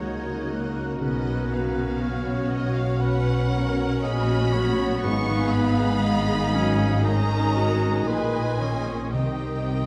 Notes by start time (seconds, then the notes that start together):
Already playing: D#3 F#3 A#3 D#4 F#4 A#4 C#5 D#5 A#5
0.01 C#2 C#3 G#3 F#4 D#5 G#6
0.26 D#4
0.50 A#3 F#6
0.76 D#4
1.00 B1 B2 C#3 F#3 B3 C#4 F#4 B4 D#5 F#6
1.25 F#3
1.50 C#4 F5
1.75 F#4
2.00 C#5 F6
2.25 C#5
2.50 D#5 F#5
2.74 F5 C#6
3.00 C#4 B4 F#5
3.52 A#4 F#5
3.77 B4
4.02 A#1 A#2 B3 F#4 G#4 D#5 B5
4.28 C#4
4.53 F#3 F#4 C#5
4.79 C#4
5.03 G#1 G#2 D#3 B3 D#4 G#4 B4 F5 C#6 D#6
5.28 D#3
5.55 B5
5.79 G#4
6.03 G#3 B3 G#4 D#5
6.28 G#4
6.53 F#3 C#4 G#5
6.78 D#6
7.03 D#3 C#4 D#4 D#5 G#5 A#5
7.29 D#6
7.55 F#4 G#5
8.07 A#1 A#2 D#3 F4 G#4 B4 D#5 G#5
8.59 D#3 C#4 C#5
8.86 C4
9.12 C2 C3 D#3 C4 D#4 G4 D#5 G5 D#6
9.39 G3